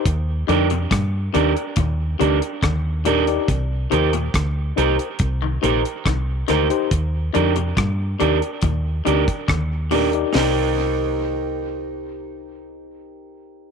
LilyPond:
<<
  \new Staff \with { instrumentName = "Reed electric piano" } { \time 4/4 \key c \minor \tempo 4 = 70 r8 <ees' g' bes' d''>16 r8. <ees' g' bes' d''>16 <bes' d''>16 r8 <ees' g' bes' d''>16 r8. <ees' g' bes' d''>16 <ees' g' bes' d''>16 | r8 <ees' g' bes' c''>16 r8. <ees' g' bes' c''>16 <bes' c''>16 r8 <ees' g' bes' c''>16 r8. <ees' g' bes' c''>16 <ees' g' bes' c''>16 | r8 <ees' g' bes' d''>16 r8. <ees' g' bes' d''>16 <bes' d''>16 r8 <ees' g' bes' d''>16 r8. <ees' g' bes' d''>16 <ees' g' bes' d''>16 | <ees' g' bes' c''>1 | }
  \new Staff \with { instrumentName = "Clean electric guitar" } { \time 4/4 \key c \minor r8 <d' g' bes'>8 r8 <d' g' bes'>8 r8 <d' g' bes'>8 r8 <d' g' bes'>8 | r8 <ees' g' bes'>8 r8 <ees' g' bes'>8 r8 <ees' g' bes'>8 r8 <ees' g' bes'>8 | r8 <d' g' bes'>8 r8 <d' g' bes'>8 r8 <d' g' bes'>8 r8 <d' g' bes'>8 | <ees' g' bes'>1 | }
  \new Staff \with { instrumentName = "Clean electric guitar" } { \clef bass \time 4/4 \key c \minor r8 d16 c16 bes,16 r16 c16 r16 bes,16 r16 c16 r16 d16 r16 bes,16 r16 | r8 c16 bes,16 r4 r16 ees16 c16 r16 ees16 r16 ees16 r16 | r8 d16 c16 bes,16 r16 c16 r16 bes,16 r16 c16 r16 d16 r16 bes,16 r16 | c8 r2. r8 | }
  \new Staff \with { instrumentName = "Fingered electric bass" } { \clef bass \time 4/4 \key c \minor ees,8 f,8 g,8 ees,16 r16 ees,8 d,16 r16 ees,4 | c,8 ees,8 d,8 c,16 r16 c,8 bes,,16 r16 c,8 d,16 r16 | ees,8 f,8 g,8 ees,16 r16 ees,8 d,16 r16 ees,4 | c,1 | }
  \new DrumStaff \with { instrumentName = "Drums" } \drummode { \time 4/4 <hh bd>8 hh16 hh16 <hh bd ss>8 hh16 hh16 <hh bd>8 hh16 hh16 <hh bd ss>8 hh16 hh16 | <hh bd>8 hh16 hh16 <hh bd ss>8 hh16 hh16 <hh bd>8 hh16 hh16 <hh bd ss>8 <hh ss>16 hh16 | <hh bd>8 hh16 hh16 <hh bd ss>8 hh16 hh16 <hh bd>8 hh16 <hh bd>16 <hh bd ss>8 hho16 hh16 | <hho sn>4 r4 r4 r4 | }
>>